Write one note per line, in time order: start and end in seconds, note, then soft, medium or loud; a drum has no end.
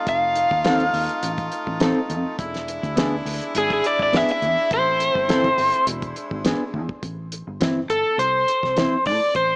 0.00 2.35 A3 medium
0.00 2.34 D#4 medium
0.00 2.34 F4 medium
0.07 0.46 F1 medium
0.07 1.78 F5 loud
0.07 kick loud
0.07 closed hi-hat medium
0.35 closed hi-hat medium
0.51 0.88 D#2 loud
0.51 kick medium
0.64 0.83 C4 medium
0.64 0.83 D#4 medium
0.64 0.84 A4 medium
0.64 snare loud
0.64 closed hi-hat medium
0.80 closed hi-hat soft
0.93 1.07 D#2 loud
0.93 open hi-hat medium
1.09 closed hi-hat soft
1.23 1.48 A1 loud
1.23 closed hi-hat medium
1.38 kick loud
1.38 closed hi-hat soft
1.52 closed hi-hat medium
1.67 1.92 A1 loud
1.67 kick medium
1.80 1.99 C4 medium
1.80 1.99 D#4 medium
1.80 1.99 A4 loud
1.80 snare loud
1.80 closed hi-hat medium
1.96 muted fingered electric bass stroke soft
2.10 2.23 F2 loud
2.10 closed hi-hat medium
2.25 muted fingered electric bass stroke soft
2.39 2.78 E1 medium
2.39 4.68 G#3 medium
2.39 4.69 D4 medium
2.39 6.99 E4 medium
2.39 kick loud
2.39 closed hi-hat medium
2.54 snare soft
2.54 closed hi-hat soft
2.68 closed hi-hat medium
2.83 3.21 D2 loud
2.83 kick medium
2.83 closed hi-hat soft
2.96 3.14 B3 medium
2.96 3.15 D4 loud
2.96 3.15 G#4 loud
2.96 snare loud
2.96 closed hi-hat loud
3.25 3.39 D2 medium
3.25 open hi-hat medium
3.41 closed hi-hat soft
3.55 3.80 G#1 loud
3.55 3.71 G#4 loud
3.55 closed hi-hat medium
3.70 3.85 G#4 medium
3.70 kick loud
3.70 closed hi-hat soft
3.84 4.00 D5 medium
3.84 closed hi-hat medium
3.99 4.25 G#1 medium
3.99 4.16 D5 medium
3.99 kick medium
4.12 4.31 B3 medium
4.12 4.31 D4 medium
4.12 4.32 G#4 medium
4.12 4.29 E5 medium
4.12 snare loud
4.12 closed hi-hat medium
4.28 4.71 E5 medium
4.28 muted fingered electric bass stroke soft
4.28 closed hi-hat soft
4.42 4.55 E2 medium
4.42 closed hi-hat medium
4.57 muted fingered electric bass stroke soft
4.71 5.10 A1 medium
4.71 5.86 A3 medium
4.71 5.85 C4 medium
4.71 5.85 C5 loud
4.71 kick loud
4.71 closed hi-hat medium
5.00 closed hi-hat medium
5.15 5.53 G1 loud
5.15 kick medium
5.28 5.47 E3 medium
5.28 5.47 C4 medium
5.28 5.47 E4 medium
5.28 5.47 A4 loud
5.28 snare loud
5.28 closed hi-hat medium
5.44 kick medium
5.44 closed hi-hat soft
5.58 5.71 G1 medium
5.58 open hi-hat medium
5.74 closed hi-hat soft
5.87 6.12 E1 loud
5.87 7.02 G#3 medium
5.87 7.02 D4 medium
5.87 closed hi-hat medium
6.02 kick medium
6.02 closed hi-hat soft
6.16 closed hi-hat medium
6.31 6.57 G#1 loud
6.31 kick medium
6.44 6.63 B3 medium
6.44 6.63 D4 medium
6.44 6.63 G#4 medium
6.44 snare loud
6.44 closed hi-hat medium
6.60 muted fingered electric bass stroke soft
6.74 6.87 E2 loud
6.74 kick medium
6.89 muted fingered electric bass stroke soft
6.89 kick medium
7.03 7.42 A1 medium
7.03 kick loud
7.03 closed hi-hat medium
7.32 closed hi-hat medium
7.47 7.85 G1 medium
7.60 7.79 E3 medium
7.60 7.79 C4 medium
7.60 7.80 E4 medium
7.60 snare loud
7.60 closed hi-hat medium
7.89 8.03 G1 medium
7.89 8.17 A4 medium
7.89 closed hi-hat medium
8.18 8.44 C2 loud
8.18 9.06 C5 medium
8.18 closed hi-hat medium
8.48 closed hi-hat medium
8.63 8.88 C2 medium
8.63 kick medium
8.63 snare soft
8.76 8.95 E3 medium
8.76 8.95 C4 medium
8.76 8.96 E4 medium
8.76 snare loud
8.76 closed hi-hat medium
9.06 9.19 A2 medium
9.06 9.36 D5 medium
9.06 kick medium
9.06 open hi-hat medium
9.20 muted fingered electric bass stroke soft
9.35 9.56 A1 medium
9.35 9.56 C5 medium
9.35 kick loud
9.35 closed hi-hat medium